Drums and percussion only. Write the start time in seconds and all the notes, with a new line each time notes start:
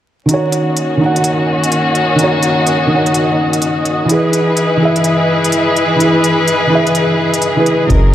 0.29 closed hi-hat
0.52 closed hi-hat
0.77 closed hi-hat
1.16 closed hi-hat
1.24 closed hi-hat
1.64 closed hi-hat
1.72 closed hi-hat
1.95 closed hi-hat
2.19 closed hi-hat
2.43 closed hi-hat
2.67 closed hi-hat
3.06 closed hi-hat
3.14 closed hi-hat
3.53 closed hi-hat
3.62 closed hi-hat
3.85 closed hi-hat
4.09 closed hi-hat
4.33 closed hi-hat
4.57 closed hi-hat
4.96 closed hi-hat
5.04 closed hi-hat
5.44 closed hi-hat
5.52 closed hi-hat
5.76 closed hi-hat
6.00 closed hi-hat
6.24 closed hi-hat
6.48 closed hi-hat
6.87 closed hi-hat
6.95 closed hi-hat
7.34 closed hi-hat
7.42 closed hi-hat
7.66 closed hi-hat
7.90 kick, closed hi-hat